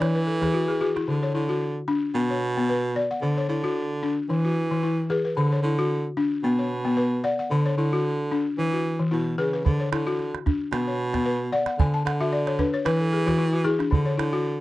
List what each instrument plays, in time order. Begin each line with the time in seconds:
Already playing: balafon D5
0.00 balafon E3 C#5, baritone saxophone E3, calabash click
0.15 balafon B4, calabash click
0.27 balafon A4
0.42 balafon E3 G#4, calabash thump, calabash click
0.54 balafon F#4
0.68 balafon G#4, calabash click
0.81 balafon F#4 G#4
0.96 balafon E4, calabash click
1.08 baritone saxophone D3, balafon D3
1.23 balafon C#5
1.34 baritone saxophone D3, balafon E4
1.49 balafon F#4
1.88 balafon D4
2.15 baritone saxophone B2, balafon B3
2.30 balafon C#5
2.57 balafon B3
2.69 balafon B4
2.96 balafon D5
3.11 balafon F#5
3.21 baritone saxophone D3, balafon D3
3.38 balafon C#5
3.49 baritone saxophone D3, balafon E4
3.64 balafon F#4
4.03 balafon D4
4.29 baritone saxophone E3, balafon E3
4.45 balafon F#4
4.71 balafon E3
4.83 balafon E4
5.10 balafon G#4 B4
5.25 balafon B4
5.36 baritone saxophone D3, balafon D3
5.52 balafon C#5
5.63 baritone saxophone D3, balafon E4
5.79 balafon F#4
6.17 balafon D4
6.43 baritone saxophone B2, balafon B3
6.59 balafon C#5
6.85 balafon B3
6.97 balafon B4
7.24 balafon D5 F#5
7.39 balafon F#5
7.50 baritone saxophone D3, balafon D3
7.66 balafon C#5
7.77 baritone saxophone D3, balafon E4
7.93 balafon F#4
8.31 balafon D4
8.58 baritone saxophone E3, balafon E3
8.73 balafon F#4
8.99 balafon E3
9.11 baritone saxophone B2, balafon E4
9.38 baritone saxophone C#3, balafon G#4 B4
9.53 balafon B4
9.65 balafon D3, baritone saxophone D3, calabash thump
9.80 balafon C#5
9.92 baritone saxophone D3, balafon E4, calabash click
10.07 balafon F#4, calabash click
10.19 calabash click
10.35 calabash click
10.46 balafon D4, calabash thump, calabash click
10.72 baritone saxophone B2, balafon B3, calabash click
10.87 balafon C#5
11.14 balafon B3, calabash thump, calabash click
11.26 balafon B4
11.52 balafon D5 F#5
11.66 balafon F#5, calabash click
11.78 baritone saxophone D3, balafon D3 G#5, calabash thump
11.94 balafon A5
12.05 baritone saxophone D3, balafon F#5, calabash click
12.20 balafon F#4 E5, calabash click
12.32 balafon D5, calabash click
12.47 balafon C#5, calabash click
12.59 balafon D4 B4, calabash thump, calabash click
12.74 balafon C#5
12.85 baritone saxophone E3, balafon E3 B4, calabash click
13.00 balafon A4
13.13 balafon G#4
13.26 balafon E3 F#4, calabash thump, calabash click
13.38 balafon E4
13.53 balafon F#4
13.64 balafon E4 G#4
13.79 balafon D4, calabash click
13.91 balafon D3, baritone saxophone D3, calabash thump
14.06 balafon C#5
14.17 baritone saxophone D3, balafon E4, calabash click
14.33 balafon F#4, calabash click
14.46 calabash click